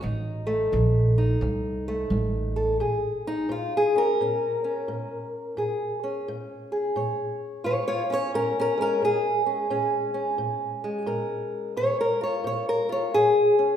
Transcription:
0.01 0.71 A1 medium
0.01 0.67 F2 medium
0.01 1.17 D#4 medium
0.47 1.86 A3 medium
0.72 1.40 A#1 medium
0.72 1.37 F2 medium
1.18 2.78 D#4 medium
1.41 2.09 C2 medium
1.41 2.07 F2 medium
1.88 2.79 A3 medium
2.10 2.78 A1 medium
2.10 2.76 F2 medium
2.56 2.78 A4 medium
2.80 3.45 A#2 medium
2.80 3.51 G#4 soft
3.27 3.50 D#4 medium
3.49 4.14 A#2 medium
3.49 3.74 F4 medium
3.77 3.98 G#4 medium
3.96 4.21 C#4 soft
3.96 6.05 A#4 medium
4.21 4.84 A#2 medium
4.21 4.64 C#4 soft
4.64 5.58 C#4 soft
4.88 5.53 A#2 medium
5.57 6.21 A#2 medium
5.57 6.72 G#4 soft
6.04 8.10 C#4 soft
6.28 6.92 A#2 medium
6.72 8.35 G#4 soft
6.96 7.60 A#2 medium
6.96 7.66 C#5 soft
7.64 8.29 A#2 medium
7.64 7.72 F4 medium
7.64 7.86 C#5 medium
7.88 8.01 F4 medium
7.88 8.11 C#5 medium
8.10 8.35 C#4 soft
8.10 8.35 C#5 medium
8.34 8.98 A#2 medium
8.34 8.57 C#4 medium
8.34 8.57 A#4 medium
8.60 8.80 C#4 medium
8.60 8.81 A#4 medium
8.78 10.83 G#3 soft
8.78 9.03 C#4 medium
8.82 9.04 A#4 medium
9.02 9.66 A#2 medium
9.02 11.07 G#4 medium
9.46 9.70 C#4 soft
9.70 10.35 A#2 medium
9.70 10.14 C#4 soft
10.14 12.20 C#4 soft
10.38 11.03 A#2 medium
10.84 13.58 G#3 soft
11.06 11.71 A#2 medium
11.06 11.77 A#4 soft
11.77 12.41 A#2 medium
11.77 12.00 C#5 medium
12.01 12.23 A#4 medium
12.21 12.88 F4 soft
12.21 12.46 C#5 medium
12.44 13.09 A#2 medium
12.44 12.69 C#5 medium
12.69 12.92 A#4 medium
12.89 13.14 F4 soft
12.89 13.15 C#5 medium
13.14 13.77 A#2 medium
13.14 13.77 G#4 medium
13.59 13.77 C#4 soft

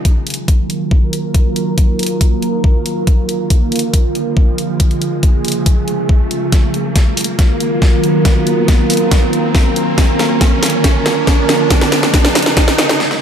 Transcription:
0.00 3.04 D#3 medium
0.00 3.04 F#3 medium
0.00 3.04 A#3 medium
0.00 6.49 F4 medium
0.00 4.76 A#4 medium
0.00 riser medium
0.05 kick medium
0.05 closed hi-hat medium
0.27 closed hi-hat soft
0.30 closed hi-hat medium
0.34 closed hi-hat medium
0.48 kick medium
0.48 closed hi-hat medium
0.70 closed hi-hat medium
0.91 kick loud
1.13 closed hi-hat medium
1.34 kick medium
1.34 closed hi-hat medium
1.56 closed hi-hat soft
1.78 kick medium
1.78 closed hi-hat medium
1.99 closed hi-hat medium
2.03 closed hi-hat medium
2.06 closed hi-hat medium
2.21 kick medium
2.21 closed hi-hat medium
2.42 closed hi-hat medium
2.64 kick medium
2.86 closed hi-hat medium
3.07 4.78 D3 medium
3.07 6.49 F3 medium
3.07 4.78 A#3 medium
3.07 kick loud
3.07 closed hi-hat medium
3.29 closed hi-hat soft
3.50 kick medium
3.50 closed hi-hat medium
3.72 closed hi-hat soft
3.76 closed hi-hat medium
3.79 closed hi-hat medium
3.94 kick medium
3.94 closed hi-hat medium
4.15 closed hi-hat medium
4.37 kick loud
4.58 closed hi-hat medium
4.80 6.51 C#3 medium
4.80 6.51 G#3 medium
4.80 6.51 G#4 medium
4.80 kick medium
4.80 closed hi-hat medium
4.91 closed hi-hat soft
5.02 closed hi-hat soft
5.23 kick loud
5.23 closed hi-hat medium
5.45 closed hi-hat soft
5.48 closed hi-hat medium
5.52 closed hi-hat medium
5.66 kick medium
5.66 closed hi-hat medium
5.88 closed hi-hat medium
6.09 kick medium
6.31 closed hi-hat medium
6.52 9.94 D#3 medium
6.52 9.94 F#3 medium
6.52 11.66 A#3 medium
6.52 12.96 F4 medium
6.52 11.67 A#4 medium
6.52 kick medium
6.52 snare soft
6.52 closed hi-hat medium
6.74 closed hi-hat soft
6.96 kick medium
6.96 snare soft
6.96 closed hi-hat medium
7.17 closed hi-hat medium
7.17 open hi-hat medium
7.24 closed hi-hat medium
7.39 kick loud
7.39 snare medium
7.39 closed hi-hat medium
7.60 closed hi-hat medium
7.82 kick loud
7.82 snare medium
8.04 closed hi-hat medium
8.25 kick loud
8.25 snare medium
8.25 closed hi-hat medium
8.47 closed hi-hat soft
8.68 kick loud
8.68 snare medium
8.68 closed hi-hat medium
8.90 closed hi-hat medium
8.90 open hi-hat medium
8.97 closed hi-hat medium
9.11 kick loud
9.11 snare medium
9.11 closed hi-hat medium
9.33 closed hi-hat soft
9.55 kick loud
9.55 snare medium
9.76 closed hi-hat medium
9.98 11.69 D3 medium
9.98 12.97 F3 medium
9.98 kick loud
9.98 snare medium
9.98 closed hi-hat medium
10.19 snare medium
10.19 closed hi-hat medium
10.41 kick loud
10.41 snare medium
10.41 closed hi-hat medium
10.63 snare medium
10.63 closed hi-hat medium
10.63 open hi-hat loud
10.70 closed hi-hat medium
10.84 kick loud
10.84 snare medium
10.84 closed hi-hat medium
11.06 snare medium
11.06 closed hi-hat soft
11.27 kick loud
11.27 snare medium
11.49 snare loud
11.49 closed hi-hat medium
11.70 12.99 C#3 medium
11.70 12.99 G#3 medium
11.70 12.99 G#4 medium
11.70 kick medium
11.70 snare medium
11.70 closed hi-hat medium
11.81 snare medium
11.81 closed hi-hat soft
11.92 snare loud
11.92 closed hi-hat medium
12.03 snare medium
12.14 kick loud
12.14 snare medium
12.14 closed hi-hat medium
12.25 snare medium
12.35 snare loud
12.35 closed hi-hat medium
12.35 open hi-hat loud
12.42 snare medium
12.42 closed hi-hat medium
12.57 kick loud
12.57 snare loud
12.57 closed hi-hat medium
12.68 snare medium
12.78 snare loud
12.78 closed hi-hat medium
12.89 snare medium
13.00 snare medium
13.11 snare medium

